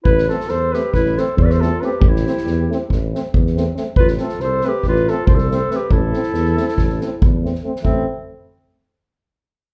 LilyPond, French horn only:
\new Staff \with { instrumentName = "French horn" } { \time 9/8 \key a \minor \tempo 4. = 92 r8 c'8 r8 c'8 r8 c'8 r8 c'8 c'8 | r8 c'8 r8 c'8 r8 c'8 r8 c'8 c'8 | r8 c'8 r8 c'8 r8 c'8 r8 c'8 c'8 | r8 c'8 r8 c'8 r8 c'8 r8 c'8 c'8 |
c'8 r1 | }